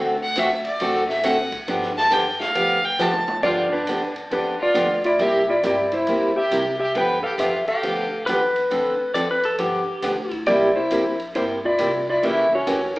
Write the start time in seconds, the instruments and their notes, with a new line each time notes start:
Already playing: upright bass D2, steel-string acoustic guitar D3 A3 C4 F#4 A4
0.23 fiddle F#5
0.35 steel-string acoustic guitar D3 A3 C4 F#4 A4, fiddle E5, hi-hat pedal, ride
0.65 fiddle D5, ride
0.80 upright bass A1, steel-string acoustic guitar D3 A3 C4 F#4 A4, ride
0.94 snare
1.09 fiddle E5, snare
1.23 steel-string acoustic guitar D3 A3 C4 F#4 A4, fiddle F#5, hi-hat pedal, ride
1.52 kick, ride
1.68 upright bass G1, steel-string acoustic guitar D3 F3 B3 D4 G4, ride
1.82 snare
1.97 fiddle A5, snare
2.11 steel-string acoustic guitar D3 F3 B3 D4 G4, fiddle G5, hi-hat pedal, ride
2.40 fiddle F5, snare
2.55 upright bass D2, steel-string acoustic guitar D3 F3 B3 D4 G4, ride
2.85 fiddle G5
2.99 steel-string acoustic guitar D3 F3 B3 D4 G4, fiddle A5, snare, hi-hat pedal
3.13 mid tom
3.28 mid tom
3.43 upright bass G2, steel-string acoustic guitar D3 F3 B3 D4 G4, fiddle F4, electric slide guitar F4 D5, kick, crash
3.71 fiddle D4, electric slide guitar D4 B4
3.87 upright bass F2, steel-string acoustic guitar D3 F3 B3 D4 G4, hi-hat pedal, ride
4.16 muted upright bass stroke, ride
4.31 upright bass E2, steel-string acoustic guitar D3 F3 B3 D4 G4, fiddle D4, electric slide guitar D4 B4, ride
4.59 fiddle F4, electric slide guitar F4 D5
4.74 upright bass D2, steel-string acoustic guitar D3 F3 B3 D4 G4, hi-hat pedal, ride
5.04 fiddle E4, electric slide guitar F4 D5, ride
5.19 upright bass C2, steel-string acoustic guitar C3 G3 A#3 E4 G4, fiddle G4, electric slide guitar G4 E5, ride
5.48 fiddle E4, electric slide guitar F4 D5
5.63 upright bass G1, steel-string acoustic guitar C3 G3 A#3 E4 G4, fiddle E4, electric slide guitar G4 D5, hi-hat pedal, ride
5.92 electric slide guitar E4 C5, fiddle E4, ride
6.07 upright bass A#1, steel-string acoustic guitar C3 G3 A#3 E4 G4, ride
6.36 electric slide guitar G4 E5, fiddle G4
6.51 upright bass C2, steel-string acoustic guitar C3 G3 A#3 E4 G4, hi-hat pedal, ride
6.80 electric slide guitar G4 E5, fiddle G4
6.95 upright bass G2, steel-string acoustic guitar D3 F3 B3 D4 G4, electric slide guitar B4 G5, fiddle B4, ride
7.23 fiddle G4, electric slide guitar A4 F5, muted upright bass stroke
7.38 upright bass F2, steel-string acoustic guitar D3 F3 B3 D4 G4, fiddle F4, electric slide guitar G4 E5, hi-hat pedal, ride
7.68 fiddle G4, electric slide guitar A4 F5, muted upright bass stroke, ride
7.83 upright bass D2, steel-string acoustic guitar D3 F3 B3 D4 G4, ride
8.26 upright bass E2, steel-string acoustic guitar D3 F3 B3 D4 G4, pedal steel guitar B4, hi-hat pedal, ride
8.56 ride
8.70 upright bass D2, steel-string acoustic guitar D3 F3 C4 D4 A4, ride
9.14 upright bass F2, steel-string acoustic guitar D3 F3 C4 D4 A4, pedal steel guitar D5, hi-hat pedal, ride
9.31 pedal steel guitar B4
9.44 pedal steel guitar A4, ride
9.58 upright bass G2, steel-string acoustic guitar D3 F3 B3 D4 G4, pedal steel guitar G4, ride
9.88 muted upright bass stroke
10.02 upright bass D2, steel-string acoustic guitar D3 F3 B3 D4 G4, hi-hat pedal, ride
10.31 kick, ride
10.46 upright bass C2, steel-string acoustic guitar C3 G3 A#3 E4 G4, fiddle E4, electric slide guitar G4 D5, ride
10.75 fiddle E4, electric slide guitar E4 C5
10.91 upright bass A#1, steel-string acoustic guitar C3 G3 A#3 E4 G4, hi-hat pedal, ride
11.20 ride
11.35 upright bass G1, steel-string acoustic guitar C3 G3 A#3 E4 G4, electric slide guitar E4 C5, fiddle E4, ride
11.65 fiddle E4, electric slide guitar F4 D5
11.78 upright bass C2, steel-string acoustic guitar C3 G3 A#3 E4 G4, hi-hat pedal, ride
12.09 fiddle E4, electric slide guitar F4 D5
12.22 upright bass C#2, steel-string acoustic guitar C#3 E3 A#3 C#4 G4, fiddle E4, electric slide guitar A#4 E5, ride
12.54 fiddle C#4, electric slide guitar F#4 C#5
12.67 upright bass D#2, steel-string acoustic guitar C#3 E3 A#3 C#4 G4, hi-hat pedal, ride
12.96 ride